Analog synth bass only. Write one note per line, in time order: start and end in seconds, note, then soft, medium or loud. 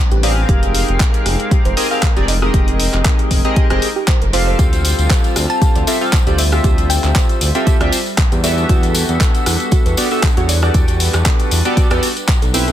0.11 0.44 A1 medium
0.49 0.83 F1 loud
0.88 0.97 F1 medium
1.26 1.36 F1 medium
1.65 1.74 F1 loud
2.17 2.49 F1 loud
2.54 2.88 F1 loud
2.93 3.02 F1 medium
3.31 3.41 F1 medium
3.70 3.79 F1 loud
4.22 4.55 F1 loud
4.59 4.93 D2 loud
4.99 5.08 D2 medium
5.36 5.47 D2 medium
5.76 5.84 D2 loud
6.27 6.60 D2 medium
6.64 6.98 D2 loud
7.04 7.13 D2 medium
7.41 7.52 D2 medium
7.81 7.90 D2 loud
8.32 8.65 E2 loud
8.69 9.04 E2 loud
9.09 9.18 E2 medium
9.46 9.57 E2 medium
9.86 9.95 E2 loud
10.37 10.70 E2 loud
10.74 11.09 E2 loud
11.14 11.23 E2 medium
11.51 11.62 E2 medium
11.91 12.00 E2 loud
12.42 12.72 B1 medium